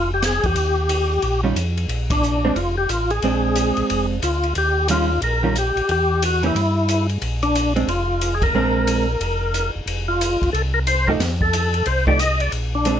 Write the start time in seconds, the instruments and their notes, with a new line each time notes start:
Already playing: tonewheel organ F1 F4
0.14 tonewheel organ G4
0.22 tonewheel organ G#4, snare, hi-hat pedal, ride
0.43 tonewheel organ E2 G4, kick, ride
0.55 tonewheel organ D#2, ride
0.89 hi-hat pedal, ride
1.22 tonewheel organ A#1, ride
1.44 hollow-body jazz guitar D#3 G3 C#4 F4
1.55 tonewheel organ F2, hi-hat pedal, ride
1.77 ride
1.88 tonewheel organ A#1, ride
2.10 tonewheel organ D4, kick, ride
2.23 hi-hat pedal
2.45 hollow-body jazz guitar G#3 C4 D4
2.55 tonewheel organ F1 F4, ride
2.78 tonewheel organ G4
2.89 tonewheel organ A1 F4, hi-hat pedal, ride
3.10 tonewheel organ G#4, ride
3.22 tonewheel organ A#1, hollow-body jazz guitar G#3 C4 D4, ride
3.55 hi-hat pedal, ride
3.77 tonewheel organ A#1, ride
3.90 tonewheel organ F1, ride
4.22 tonewheel organ D2 F4, hi-hat pedal, ride
4.43 ride
4.55 tonewheel organ D#2 G4, ride
4.88 hollow-body jazz guitar D#3 G3 C#4 F4, tonewheel organ F4, hi-hat pedal, ride
5.22 tonewheel organ A#1 A#4, ride
5.43 hollow-body jazz guitar D#3 G3 C#4 F4
5.55 tonewheel organ G4, hi-hat pedal, ride
5.76 tonewheel organ A#1, ride
5.89 tonewheel organ E2 G4, ride
6.22 tonewheel organ F#4, hi-hat pedal, ride
6.43 hollow-body jazz guitar E3 A#3 C#4 G4, tonewheel organ E4, ride
6.55 tonewheel organ G2, ride
6.89 hi-hat pedal, ride
7.09 ride
7.22 tonewheel organ A#1, ride
7.43 tonewheel organ D4, ride
7.55 hi-hat pedal, ride
7.76 hollow-body jazz guitar G#3 C4 D4, ride
7.87 tonewheel organ F1 F4, ride
8.21 hi-hat pedal, ride
8.35 tonewheel organ G#4
8.42 tonewheel organ A#4, kick, ride
8.53 tonewheel organ A#1, hollow-body jazz guitar G#3 C4 D4
8.87 hi-hat pedal, ride
9.20 tonewheel organ F1, ride
9.54 hi-hat pedal, ride
9.75 tonewheel organ F1
9.86 tonewheel organ F1, ride
10.08 tonewheel organ F4
10.21 hi-hat pedal, ride
10.42 tonewheel organ F1, kick, ride
10.53 tonewheel organ C2 A4, ride
10.74 tonewheel organ A#4
10.87 tonewheel organ C5, hi-hat pedal, ride
11.07 hollow-body jazz guitar F3 A3 D#4 G4, tonewheel organ A#4, kick
11.20 tonewheel organ F2, snare, ride
11.41 tonewheel organ A4, kick
11.53 hi-hat pedal, ride
11.74 ride
11.86 tonewheel organ C2 C5, ride
12.07 hollow-body jazz guitar F3 A3 D#4 G4, tonewheel organ D5, kick
12.19 tonewheel organ D#5, hi-hat pedal, ride
12.40 tonewheel organ D5, ride
12.52 tonewheel organ A#1, ride
12.75 tonewheel organ D4
12.85 hollow-body jazz guitar G#3 C4 D4, hi-hat pedal, ride